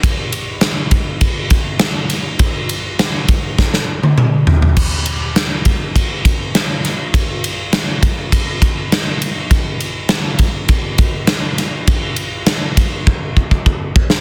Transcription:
\new DrumStaff \with { instrumentName = "Drums" } \drummode { \time 4/4 \tempo 4 = 101 <bd cymr>8 cymr8 <cymr sn>8 <bd cymr>8 <bd cymr>8 <bd cymr>8 <cymr sn>8 <cymr sn>8 | <bd cymr>8 cymr8 <cymr sn>8 <bd cymr>8 <bd sn>16 sn8 tommh16 toml8 tomfh16 tomfh16 | <cymc bd>8 cymr8 <cymr sn>8 <bd cymr>8 <bd cymr>8 <bd cymr>8 <cymr sn>8 <cymr sn>8 | <bd cymr>8 cymr8 <cymr sn>8 <bd cymr>8 <bd cymr>8 <bd cymr>8 <cymr sn>8 cymr8 |
<bd cymr>8 cymr8 <cymr sn>8 <bd cymr>8 <bd cymr>8 <bd cymr>8 <cymr sn>8 <cymr sn>8 | <bd cymr>8 cymr8 <cymr sn>8 <bd cymr>8 bd8 bd16 bd16 bd8 bd16 sn16 | }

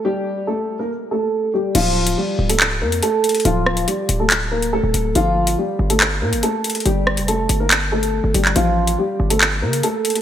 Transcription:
<<
  \new Staff \with { instrumentName = "Grand piano" } { \time 4/4 \key d \minor \tempo 4 = 141 <g g'>4 <a a'>8. <bes bes'>16 r8 <a a'>4 <g g'>8 | <f f'>4 <g g'>8. <a a'>16 r8 <bes bes'>8 <a a'>4 | <f f'>4 <g g'>8. <a a'>16 r8 <bes bes'>8 <a a'>4 | <f f'>4 <g g'>8. <a a'>16 r8 <bes bes'>8 <a a'>4 |
<g g'>4 <a a'>8. <bes bes'>16 r8 <a a'>4 <g g'>8 | <f f'>4 <g g'>8. <a a'>16 r8 <bes bes'>8 <a a'>4 | }
  \new Staff \with { instrumentName = "808-style bass" } { \clef bass \time 4/4 \key d \minor r1 | d,,4 r8 cis,,4 f,8 r4 | d,,4 r8 d,,4.~ d,,16 d,,16 d,,8 | g,,4 r8 g,,4 bes,16 g,,16 r4 |
g,,8. f,,8. g,,4.~ g,,16 g,,16 g,,8 | a,,4 r8 g,,4 cis8 r4 | }
  \new DrumStaff \with { instrumentName = "Drums" } \drummode { \time 4/4 r4 r4 r4 r4 | <cymc hh>8. hh16 r8. hh16 hc8. hh16 hh8 hh32 hh32 hh32 hh32 | hh8 ss16 hh16 hh8 hh8 <hc hh>8. hh16 r8 hh8 | hh8. hh16 r8. hh16 hc8. hh16 hh8 hh32 hh32 hh32 hh32 |
hh8 ss16 hh16 hh8 hh8 <hc hh>8. hh16 r8 hh16 hc16 | hh8. hh16 r8. hh16 hc8. hh16 hh8 hh32 hh32 hh16 | }
>>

